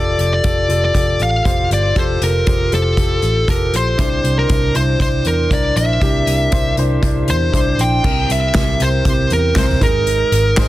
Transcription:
Already playing: picked electric bass F1, grand piano F4 G4 A4, lead electric guitar D5
0.18 picked electric bass F1, closed hi-hat
0.33 lead electric guitar D5
0.43 picked electric bass F1, grand piano F4 G4 A4, kick, closed hi-hat
0.68 picked electric bass F1, grand piano F4 G4 A4, closed hi-hat
0.85 lead electric guitar D5
0.94 picked electric bass F1, grand piano F4 G4 A4, kick, closed hi-hat
1.19 picked electric bass A1, lead electric guitar F5, closed hi-hat
1.45 picked electric bass F1, grand piano F4 G4 C5, kick, closed hi-hat
1.70 picked electric bass G1, lead electric guitar D5, closed hi-hat
1.95 picked electric bass F1, grand piano F4 G4 A4, lead electric guitar C5, kick, closed hi-hat
2.21 picked electric bass F1, lead electric guitar A#4, closed hi-hat
2.46 picked electric bass F1, grand piano F4 G4 C5, kick, closed hi-hat
2.71 picked electric bass F1, grand piano F4 G4 C5, lead electric guitar A4, closed hi-hat
2.96 picked electric bass F1, grand piano F4 G4 A4, kick, closed hi-hat
3.22 picked electric bass A1, closed hi-hat
3.47 grand piano F4 G4 A4, lead electric guitar A#4, kick, closed hi-hat
3.73 picked electric bass A#1, lead electric guitar C5, closed hi-hat
3.98 picked electric bass C2, grand piano C3 D4 E4 C5, kick, closed hi-hat
4.24 picked electric bass C2, closed hi-hat
4.39 lead electric guitar A#4
4.48 picked electric bass C2, grand piano D4 E4 C5, kick, closed hi-hat
4.74 picked electric bass C2, grand piano D4 E4 C5, lead electric guitar C5, closed hi-hat
4.99 picked electric bass C2, grand piano D4 E4 C5, lead electric guitar C5, kick, closed hi-hat
5.25 picked electric bass E2, lead electric guitar A#4, closed hi-hat
5.50 picked electric bass C2, grand piano D4 E4 A#4, lead electric guitar D5, kick, closed hi-hat
5.76 picked electric bass A#1, lead electric guitar E5, closed hi-hat
6.00 picked electric bass C2, grand piano C3 D4 E4 G4, kick, closed hi-hat
6.27 picked electric bass C2, closed hi-hat
6.51 picked electric bass C2, grand piano D4 E4 C5, kick, closed hi-hat
6.77 picked electric bass C2, grand piano D4 E4 C5, closed hi-hat
7.02 picked electric bass C2, grand piano D4 E4 D5, kick, closed hi-hat
7.28 picked electric bass E2, lead electric guitar C5, closed hi-hat
7.52 picked electric bass C2, grand piano D4 E4 C5, kick, closed hi-hat
7.78 picked electric bass A#1, lead electric guitar G5, closed hi-hat
8.03 picked electric bass C2, grand piano C3 C4 E4 A#4, kick, crash
8.29 picked electric bass C2, lead electric guitar E5, closed hi-hat
8.53 picked electric bass C2, grand piano C4 E4 G4, kick, snare, clap, closed hi-hat
8.80 picked electric bass C2, lead electric guitar C5, closed hi-hat
9.05 picked electric bass C2, grand piano C4 E4 G4, kick, closed hi-hat
9.30 picked electric bass E2, lead electric guitar A#4, closed hi-hat
9.55 picked electric bass C2, grand piano C4 E4 A#4, lead electric guitar C5, kick, snare, clap, closed hi-hat
9.69 snare, floor tom
9.81 picked electric bass G#1, grand piano G#2 D#4 G#4 A#4, lead electric guitar A#4, kick, closed hi-hat, floor tom
10.07 closed hi-hat
10.32 picked electric bass G#1, closed hi-hat
10.57 picked electric bass G#1, grand piano D#4 G#4 C5, kick, snare, clap, closed hi-hat

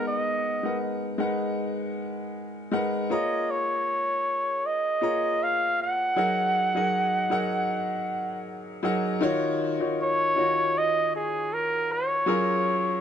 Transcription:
Already playing: grand piano G#3 B3 D#4 A#4 F#5
0.08 flugelhorn D#5
0.63 grand piano G#3 D#4 A#4 B4 F#5
1.18 grand piano G#3 D#4 A#4 B4 F#5
2.71 grand piano G#3 D#4 A#4 B4 F#5
3.10 grand piano A#3 F4 G#4 C#5 A#5, flugelhorn D#5
3.51 flugelhorn C#5
4.66 flugelhorn D#5
5.01 grand piano A#3 F4 G#4 C#5 A#5
5.43 flugelhorn F5
5.82 flugelhorn F#5
6.16 grand piano F#3 D#4 G#4 A#4 F#5
6.75 grand piano F#3 D#4 G#4 A#4 D#5
7.30 grand piano F#3 D#4 G#4 A#4 F#5
8.83 grand piano F#3 D#4 G#4 A#4 F#5
9.21 grand piano D#3 D#4 F4 F#4 C#5
9.80 grand piano D#3 D#4 F4 F#4 C#5
10.03 flugelhorn C#5
10.36 grand piano D#3 D#4 F4 F#4 C#5
10.78 flugelhorn D#5
11.16 flugelhorn G#4
11.54 flugelhorn A#4
11.92 flugelhorn C#5
12.26 grand piano F#3 C#4 F4 G#4 A#4

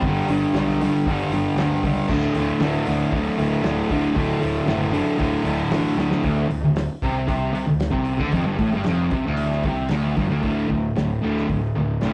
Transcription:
0.02 picked electric bass G1, kick, open hi-hat
0.06 distorted electric guitar G2 D3 G3
0.27 picked electric bass G1, distorted electric guitar G2 D3 G3, open hi-hat
0.53 picked electric bass B1, distorted electric guitar G2, snare, open hi-hat
0.58 distorted electric guitar D3 G3
0.81 distorted electric guitar G2 D3 G3, open hi-hat
1.06 picked electric bass G1, distorted electric guitar G2 D3 G3, kick, open hi-hat
1.30 picked electric bass G1, distorted electric guitar G2 D3, open hi-hat
1.34 distorted electric guitar G3
1.55 picked electric bass D2, distorted electric guitar G2, snare, open hi-hat
1.60 distorted electric guitar D3 G3
1.83 picked electric bass C#2, distorted electric guitar G2 D3 G3, kick, open hi-hat
2.08 picked electric bass D1, distorted electric guitar D2 A2 D3, kick, crash
2.24 snare
2.34 picked electric bass D1, distorted electric guitar D2 A2 D3, open hi-hat
2.60 picked electric bass D2, distorted electric guitar D2 A2 D3, snare, open hi-hat
2.86 picked electric bass D1, distorted electric guitar D2 A2 D3, open hi-hat
3.12 picked electric bass D1, distorted electric guitar D2 A2 D3, kick, open hi-hat
3.37 picked electric bass D1, distorted electric guitar D2 A2 D3, open hi-hat
3.63 picked electric bass D1, distorted electric guitar D2 A2 D3, snare, open hi-hat
3.90 picked electric bass D1, distorted electric guitar D2 A2 D3, kick, open hi-hat
4.15 picked electric bass D1, distorted electric guitar D2 A2 D3, kick, open hi-hat
4.40 picked electric bass D1, distorted electric guitar D2 A2 D3, open hi-hat
4.66 picked electric bass F#1, distorted electric guitar D2 A2 D3, snare, open hi-hat
4.92 distorted electric guitar D2 A2 D3, open hi-hat
5.17 picked electric bass D1, distorted electric guitar D2 A2 D3, kick, open hi-hat
5.44 picked electric bass D1, distorted electric guitar D2 A2 D3, open hi-hat
5.70 picked electric bass A1, distorted electric guitar D2 A2 D3, snare, open hi-hat
5.96 picked electric bass D1, distorted electric guitar D2 A2 D3, snare
6.11 snare
6.23 picked electric bass D1, distorted electric guitar D2, kick, open hi-hat
6.49 picked electric bass D1, distorted electric guitar D2, open hi-hat
6.63 picked electric bass D1, distorted electric guitar D2
6.76 snare, open hi-hat
7.02 picked electric bass C2, distorted electric guitar C3, kick, open hi-hat
7.28 picked electric bass C2, distorted electric guitar C3, kick, open hi-hat
7.53 picked electric bass C2, distorted electric guitar C3, open hi-hat
7.66 picked electric bass D1, distorted electric guitar D2
7.80 snare, open hi-hat
7.91 picked electric bass C2, distorted electric guitar C3, kick
8.05 open hi-hat
8.18 picked electric bass D2, distorted electric guitar D3, kick
8.32 picked electric bass F1, distorted electric guitar F2, kick, open hi-hat
8.45 picked electric bass G1, distorted electric guitar G2
8.58 picked electric bass A1, distorted electric guitar A2, kick, open hi-hat
8.72 picked electric bass G1, distorted electric guitar G2
8.84 picked electric bass F1, distorted electric guitar F2, snare, open hi-hat
9.11 picked electric bass C2, distorted electric guitar C3, kick, open hi-hat
9.26 picked electric bass D1, distorted electric guitar D2
9.37 open hi-hat
9.52 snare
9.63 picked electric bass C2, distorted electric guitar C3, kick, open hi-hat
9.89 picked electric bass D1, distorted electric guitar D2, snare, open hi-hat
10.16 picked electric bass G1, distorted electric guitar G2, kick, open hi-hat
10.28 picked electric bass D1, distorted electric guitar D2
10.42 picked electric bass D1, distorted electric guitar D2 A2 D3, kick, open hi-hat
10.68 picked electric bass D1, distorted electric guitar D2 A2, kick
10.95 picked electric bass D1, distorted electric guitar D2 A2, snare, open hi-hat
11.22 picked electric bass D1, distorted electric guitar D2 A2 D3
11.38 snare
11.48 picked electric bass D1, distorted electric guitar D2 A2, kick, open hi-hat
11.75 picked electric bass D1, distorted electric guitar D2 A2
12.01 picked electric bass C2, distorted electric guitar D2 A2 D3, snare, open hi-hat

